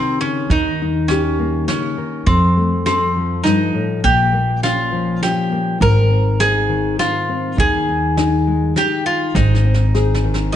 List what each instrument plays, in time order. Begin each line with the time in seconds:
Already playing: nylon-string guitar C3 D#3 C4 G4, mandolin C4
0.21 nylon-string guitar C#3, mandolin C#4
0.50 upright bass D#2, nylon-string guitar D#3, mandolin D#4, kick, closed hi-hat
0.82 nylon-string guitar D#4
1.08 mandolin C#4, nylon-string guitar G4, snare, closed hi-hat
1.39 nylon-string guitar A#3
1.68 nylon-string guitar C#3, mandolin C#4, snare, closed hi-hat
1.97 nylon-string guitar D#3
2.27 upright bass F2, nylon-string guitar F2, mandolin C4, kick, closed hi-hat
2.57 nylon-string guitar A3
2.86 mandolin C4, nylon-string guitar A4, snare, closed hi-hat
3.16 nylon-string guitar F3
3.44 nylon-string guitar G2, mandolin D#4, snare, closed hi-hat
3.74 nylon-string guitar A2
4.04 upright bass A#1, nylon-string guitar A#2, mandolin G4, kick, closed hi-hat
4.33 nylon-string guitar A#3
4.63 nylon-string guitar C#4, mandolin F4, snare, closed hi-hat
4.92 nylon-string guitar F3
5.22 nylon-string guitar C#4, mandolin G4, snare, closed hi-hat
5.52 nylon-string guitar A#3
5.80 upright bass G#1, nylon-string guitar G#2, mandolin A#4, kick, closed hi-hat
6.10 nylon-string guitar C4
6.40 nylon-string guitar D#4, mandolin G#4, snare, closed hi-hat
6.69 nylon-string guitar D#3
6.99 nylon-string guitar D#4, mandolin F4, snare, closed hi-hat
7.29 nylon-string guitar C4
7.57 upright bass D#2, nylon-string guitar D#3, mandolin G#4, kick, closed hi-hat
7.89 nylon-string guitar D#4
8.17 nylon-string guitar D#4, snare, closed hi-hat
8.47 nylon-string guitar G#3
8.76 nylon-string guitar D#4, mandolin G4, snare
9.06 nylon-string guitar D#4, mandolin F4
9.35 upright bass G#1, nylon-string guitar G#2, mandolin D#4, kick, snare
9.55 snare
9.64 nylon-string guitar C4
9.74 snare
9.95 nylon-string guitar G#4, snare
10.14 snare
10.24 nylon-string guitar D#3
10.34 snare
10.52 mandolin D#5